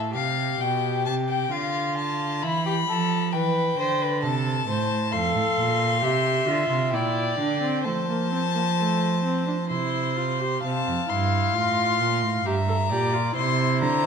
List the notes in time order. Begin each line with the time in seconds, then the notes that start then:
Already playing: A2 A4
0.15 C3 G4 F5
0.60 B2 G5
1.06 C3 A5
1.29 G5
1.51 D3 F4 F5
1.98 A5
2.42 E3 E4 B5
2.66 G4
2.88 F3 A4
3.33 E3 B4 G5
3.78 D3 C5
4.02 B4
4.23 C3 A4 A5
4.68 A2 C5
5.12 F2 A4 F5 C6
5.35 A2
5.58 A#2
6.02 C3 G4 E5
6.47 D3 F4
6.70 C3
6.93 A#2 E4 D5 G5
7.39 D3 D4
7.62 C4
7.84 F3 A3 C5 A5
8.09 A#3
8.32 C4
8.55 A#3
8.78 A3
9.24 C4
9.47 D4
9.70 C3 E4 C5 C6
10.17 F4
10.40 G4
10.63 C3 C4 F5 A5
10.86 F2
11.09 G2 E4 C6
11.55 A2 F4
12.00 A#2
12.22 A2
12.45 G2 G4 E5 A#5
12.68 A4
12.90 A#2 G4 D5
13.13 F4
13.36 C3 E4 C5 C6
13.81 D3 A#5